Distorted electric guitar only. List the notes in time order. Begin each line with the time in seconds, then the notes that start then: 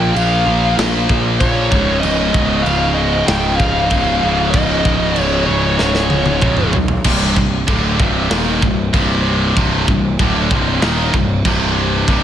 Already playing: A#2 F3 A#3
1.70 C#2 G#2 C#3
3.90 C#2 G#2 C#3
4.21 C#2 G#2 C#3
6.41 C#2 G#2 C#3
7.05 C2 G2 C3
7.36 C2 G2
7.67 D2 A2 D3
7.98 C2 G2 C3
8.30 D#2 A#2 D#3
8.62 C2 G2
8.93 C2 G2 C3
9.56 C2 G2 C3
9.88 C2 G2
10.20 D2 A2 D3
10.50 C2 G2 C3
10.81 D#2 A#2 D#3
11.13 C2 G2
11.46 C2 G2 C3
12.08 C2 G2 C3